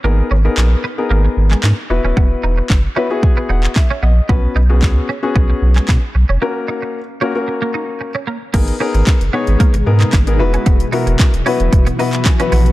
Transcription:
<<
  \new Staff \with { instrumentName = "Grand piano" } { \time 4/4 \key gis \minor \tempo 4 = 113 << { r1 | r4. b''8 gis''8 fis''8 e''8 dis''8 | r1 | r1 |
r1 | r2. gis''8 fis''8 | } \\ { <b dis' gis' ais'>8 r16 <b dis' gis' ais'>8. r16 <b dis' gis' ais'>4. r16 <b e' fis' b'>8~ | <b e' fis' b'>4 r8 <b e' fis' b'>16 <b e' fis' gis'>4. r8. | <b cis' fis' b'>8 r16 <b cis' fis' gis'>8. r16 <b cis' fis' gis'>4. r8. | <ais cis' fis' ais'>4 r8 <ais cis' fis' ais'>16 <ais cis' fis' ais'>4. r8. |
<b dis' gis' ais'>16 r16 <b dis' gis' ais'>8. r16 <b dis' gis' cis''>8. r16 <b dis' gis' ais'>8 r16 <b dis' gis' ais'>16 <b e' fis' b'>8~ | <b e' fis' b'>16 r16 <b e' fis' ais'>8. r16 <b e' fis' b'>8. r16 <b e' fis' b'>8 r16 <b e' fis' b'>8 r16 | } >> }
  \new Staff \with { instrumentName = "Ambient pad" } { \time 4/4 \key gis \minor << { r1 | r1 | r1 | r1 |
<gis dis' gis' ais'>2.~ <gis dis' gis' ais'>8 <e fis e' fis'>8~ | <e fis e' fis'>1 | } \\ { r1 | r1 | r1 | r1 |
b,1~ | b,1 | } >> }
  \new Staff \with { instrumentName = "Clean electric guitar" } { \time 4/4 \key gis \minor ais16 r16 cis'16 r8. b16 r16 ais16 r8 gis16 ais16 r8 cis'16 | b16 r16 dis'16 r8. cis'16 r8 b16 dis'16 r8 cis'16 b16 r16 | b16 r16 dis'16 r8. cis'16 r16 b16 r8 gis16 b16 r8 cis'16 | ais16 r16 dis'16 r8. cis'16 r8 ais16 dis'16 r8 cis'16 ais16 r16 |
ais16 r16 cis'16 r8. b16 r16 ais16 r8 gis16 ais16 r8 cis'16 | b16 r16 dis'16 r8. cis'16 r8 b16 dis'16 r8 cis'16 b16 r16 | }
  \new Staff \with { instrumentName = "Sub bass" } { \clef bass \time 4/4 \key gis \minor gis,,8 gis,,8 ais,,8 r8 gis,,8 gis,,8 gis,16 r16 e,,16 dis,,16 | e,,8 e,,8 fis,,8 r4 e,,8 r8 ais,,8 | b,,8 b,,8 cis,8 r8 b,,8 b,,8 b,16 r16 b,,16 eis,,16 | r1 |
gis,,8 r16 gis,,16 r16 fis,,16 r16 gis,,16 r16 gis,,16 gis,8 gis,,8 e,,8 | e,,8 r16 e,,16 r16 dis,,16 r16 e,,16 e,,8 r4 ais,,8 | }
  \new DrumStaff \with { instrumentName = "Drums" } \drummode { \time 4/4 r4 <hc sn>4 r8. hc16 <hc sn>4 | bd4 <hc bd sn>4 bd8. hc16 <hc bd sn>4 | bd4 <hc bd sn>4 bd8. hc16 <hc bd sn>4 | r4 r4 r4 r4 |
<cymc hh bd>16 hh8 hh16 <hc hh bd sn>16 hh8 hh16 <hh bd>16 hh8 <hc hh>16 <hc hh bd sn>16 hh8 hh16 | <hh bd>16 hh16 hho16 hh16 <hc hh bd sn>16 hh16 hho16 hh16 <hh bd>16 hh16 hho16 <hc hh>16 <hc hh bd sn>16 hh16 hho16 hh16 | }
>>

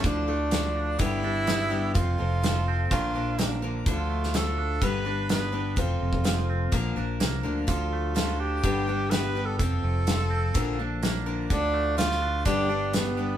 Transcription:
<<
  \new Staff \with { instrumentName = "Tenor saxophone" } { \time 4/4 \key d \minor \tempo 4 = 126 d'2 e'2 | f'2 f'4. r8 | f'4 a'4 b'4 b'4 | f'2 r2 |
f'4 f'8 g'4. b'8. a'16 | a'2.~ a'8 r8 | d'4 f'4 d'4 b4 | }
  \new Staff \with { instrumentName = "Steel-string acoustic guitar" } { \time 4/4 \key d \minor <d f d' f' a'>8 <d' f' a'>8 <f d' f' a'>4 <g, d g b d' g'>8 <g b d' g'>4 <g b d' g'>8 | <f c' f' a'>8 <c' f' a'>8 <f c' f' a'>4 <bes, d f bes d' bes'>8 <f bes d' bes'>4 <f bes d' bes'>8 | <d f d' f' a'>4 <f d' f' a'>4 <g, d g b d' b'>8 <g b d' b'>4 <g b d' b'>8 | <f c' f' a'>4 <f c' f' a'>4 <bes, d f bes d' bes'>8 <f bes d' bes'>4 <f bes d' bes'>8 |
<d f d' f' a'>4 <f d' f' a'>4 <g, d g b d' g'>8 <g b d' g'>4 <g b d' g'>8 | <f c' f' a'>4 <f c' f' a'>4 <bes, d f bes d' bes'>8 <f bes d'>4 <f bes d' bes'>8 | <d f d' f' a'>4 <f d' f' a'>4 <g, d g b d' g'>8 <g b d' g'>4 <g b d' g'>8 | }
  \new Staff \with { instrumentName = "Clean electric guitar" } { \clef bass \time 4/4 \key d \minor d8 a8 d8 d'8 g,8 d'8 b8 g8 | f,8 c8 f8 c'8 bes,8 d'8 bes8 d8 | d8 a8 d8 d'8 g,8 d'8 b8 g8 | f,8 c8 f8 c'8 bes,8 d'8 bes8 d8 |
d8 a8 d8 d'8 g,8 d'8 b8 g8 | f,8 c8 f8 c'8 bes,8 d'8 bes8 d8 | d8 a8 d8 d'8 g,8 d'8 b8 g8 | }
  \new Staff \with { instrumentName = "Fingered electric bass" } { \clef bass \time 4/4 \key d \minor d,2 g,,2 | f,,8 f,,4. bes,,2 | d,2 g,,2 | f,,8 f,,4. bes,,8 bes,,8 c,8 d,8 |
d,2 g,,2 | f,,8 f,,4. bes,,2 | d,2 g,,2 | }
  \new DrumStaff \with { instrumentName = "Drums" } \drummode { \time 4/4 <hh bd>4 <hh sn>4 <hh bd>4 <hh sn>4 | <hh bd>4 <hh sn>4 <hh bd>4 <hh sn>4 | <hh bd>8. sn16 <hh sn>4 <hh bd>4 <hh sn>4 | <hh bd>8. bd16 <hh sn>4 <hh bd>4 <hh sn>4 |
<hh bd>4 <hh sn>4 <hh bd>4 <hh sn>4 | <hh bd>4 <hh sn>4 <hh bd>4 <hh sn>4 | <hh bd>4 <hh sn>16 sn8. <hh bd>4 <hh sn>4 | }
>>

